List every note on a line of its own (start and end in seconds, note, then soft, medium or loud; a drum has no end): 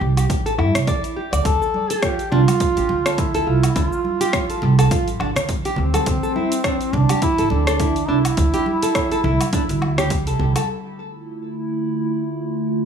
0.01 0.30 C2 medium
0.17 0.24 G4 medium
0.17 open hi-hat soft
0.17 low woodblock medium
0.17 shaker medium
0.30 0.60 A1 medium
0.30 kick loud
0.30 open hi-hat soft
0.30 shaker medium
0.46 0.57 A4 medium
0.46 open hi-hat soft
0.46 shaker soft
0.58 0.69 G2 loud
0.58 0.74 E4 medium
0.58 low woodblock medium
0.75 0.83 C2 medium
0.75 cross-stick medium
0.75 open hi-hat soft
0.75 shaker medium
0.87 1.02 D5 loud
0.87 kick loud
0.87 open hi-hat soft
0.87 shaker medium
1.04 open hi-hat soft
1.04 shaker soft
1.17 1.31 G4 medium
1.33 1.40 D2 medium
1.33 1.45 D5 medium
1.33 open hi-hat soft
1.33 low woodblock medium
1.33 shaker medium
1.45 1.55 D2 medium
1.45 1.92 A4 loud
1.45 kick loud
1.45 open hi-hat soft
1.45 shaker medium
1.62 1.89 A4 medium
1.62 shaker soft
1.74 high conga medium
1.90 2.31 G4 loud
1.90 2.02 A4 loud
1.90 open hi-hat soft
1.90 shaker medium
2.03 2.18 F4 medium
2.03 kick loud
2.03 cross-stick medium
2.03 open hi-hat soft
2.03 shaker soft
2.19 open hi-hat soft
2.19 shaker soft
2.31 2.42 C2 loud
2.31 2.41 D4 medium
2.31 3.13 F4 loud
2.31 muted conga medium
2.31 high conga soft
2.31 low conga medium
2.48 open hi-hat soft
2.48 muted conga soft
2.48 high conga medium
2.48 low woodblock medium
2.48 shaker medium
2.60 kick loud
2.60 open hi-hat soft
2.60 shaker medium
2.77 2.85 A1 medium
2.77 2.89 G4 medium
2.77 open hi-hat soft
2.77 shaker soft
2.89 3.40 D2 medium
2.89 muted conga soft
3.06 3.33 A4 medium
3.06 cross-stick medium
3.06 open hi-hat soft
3.06 shaker medium
3.13 3.20 F4 medium
3.18 3.78 E4 medium
3.18 kick loud
3.18 open hi-hat soft
3.18 shaker medium
3.34 3.46 A4 loud
3.34 open hi-hat soft
3.34 shaker soft
3.47 3.66 C2 medium
3.47 3.63 F4 medium
3.63 open hi-hat soft
3.63 low woodblock medium
3.63 shaker medium
3.76 3.86 D2 loud
3.76 3.85 D4 medium
3.76 4.63 F4 medium
3.76 kick loud
3.76 open hi-hat medium
3.76 shaker soft
3.93 shaker soft
4.05 high conga medium
4.21 4.33 G4 loud
4.21 open hi-hat soft
4.21 shaker medium
4.33 kick medium
4.33 cross-stick medium
4.33 open hi-hat soft
4.33 shaker medium
4.50 4.77 A4 medium
4.50 open hi-hat soft
4.50 shaker soft
4.62 4.91 C2 loud
4.62 muted conga medium
4.62 high conga soft
4.79 4.90 A4 medium
4.79 open hi-hat soft
4.79 muted conga soft
4.79 high conga medium
4.79 low woodblock medium
4.79 shaker medium
4.91 5.11 A1 medium
4.91 5.07 F4 medium
4.91 kick loud
4.91 open hi-hat medium
4.91 shaker medium
5.07 open hi-hat soft
5.07 high conga soft
5.07 shaker soft
5.20 5.30 A1 medium
5.20 5.29 D4 medium
5.20 muted conga medium
5.20 low woodblock medium
5.36 cross-stick medium
5.36 open hi-hat soft
5.36 low conga medium
5.36 shaker medium
5.49 5.59 D2 medium
5.49 kick loud
5.49 open hi-hat soft
5.49 shaker medium
5.65 5.77 G4 loud
5.65 open hi-hat soft
5.65 shaker soft
5.76 5.97 D2 medium
5.76 6.96 C4 medium
5.76 low conga medium
5.94 6.07 A4 medium
5.94 open hi-hat soft
5.94 high conga medium
5.94 low woodblock medium
5.94 shaker medium
6.06 6.17 D2 medium
6.06 kick medium
6.06 open hi-hat medium
6.06 shaker soft
6.23 6.34 A4 loud
6.23 shaker soft
6.36 6.51 E4 medium
6.36 high conga medium
6.52 open hi-hat soft
6.52 shaker medium
6.64 6.74 D4 loud
6.64 kick medium
6.64 cross-stick medium
6.64 open hi-hat medium
6.64 shaker soft
6.81 open hi-hat soft
6.81 shaker soft
6.93 7.03 C2 loud
6.93 7.22 D4 loud
6.93 muted conga medium
6.93 high conga soft
6.93 low conga medium
7.09 7.22 G4 medium
7.09 open hi-hat soft
7.09 muted conga soft
7.09 high conga medium
7.09 low woodblock medium
7.09 shaker medium
7.22 7.49 E4 loud
7.22 kick medium
7.22 open hi-hat medium
7.22 shaker soft
7.38 7.46 A1 medium
7.38 7.66 A4 medium
7.38 open hi-hat soft
7.38 shaker soft
7.50 8.01 D2 medium
7.50 8.10 D4 loud
7.50 muted conga medium
7.67 7.79 A4 medium
7.67 cross-stick medium
7.67 open hi-hat soft
7.67 shaker medium
7.80 7.95 E4 medium
7.80 kick loud
7.80 open hi-hat medium
7.80 shaker soft
7.96 open hi-hat soft
7.96 shaker soft
8.09 8.28 C2 medium
8.09 8.18 D4 medium
8.09 10.11 E4 loud
8.25 open hi-hat soft
8.25 low woodblock medium
8.25 shaker medium
8.37 8.48 D2 medium
8.37 kick loud
8.37 open hi-hat medium
8.37 shaker soft
8.54 8.66 G4 loud
8.54 open hi-hat soft
8.54 shaker soft
8.66 high conga medium
8.82 9.10 A4 medium
8.82 open hi-hat soft
8.82 shaker medium
8.95 kick loud
8.95 cross-stick medium
8.95 open hi-hat medium
8.95 shaker medium
9.11 9.23 A4 loud
9.11 open hi-hat soft
9.11 shaker soft
9.24 9.34 C2 loud
9.24 9.40 E4 medium
9.24 muted conga medium
9.24 high conga soft
9.24 low conga medium
9.41 open hi-hat soft
9.41 muted conga soft
9.41 high conga medium
9.41 low woodblock medium
9.41 shaker medium
9.53 9.62 D4 loud
9.53 kick loud
9.53 open hi-hat medium
9.53 muted conga soft
9.53 shaker medium
9.69 10.27 D2 loud
9.69 open hi-hat soft
9.69 high conga soft
9.69 shaker soft
9.82 muted conga medium
9.82 low woodblock medium
9.98 10.10 G4 medium
9.98 cross-stick medium
9.98 open hi-hat soft
9.98 low conga medium
9.98 shaker medium
10.10 kick medium
10.10 open hi-hat medium
10.10 shaker medium
10.27 10.35 C2 medium
10.27 10.54 A4 medium
10.27 open hi-hat soft
10.27 shaker soft
10.39 10.50 C2 medium
10.39 low conga medium
10.56 10.67 A4 loud
10.56 open hi-hat soft
10.56 high conga medium
10.56 low woodblock medium
10.56 shaker medium
10.68 12.85 D3 medium
10.68 12.85 A3 medium
10.68 12.85 E4 medium
10.68 12.85 F4 medium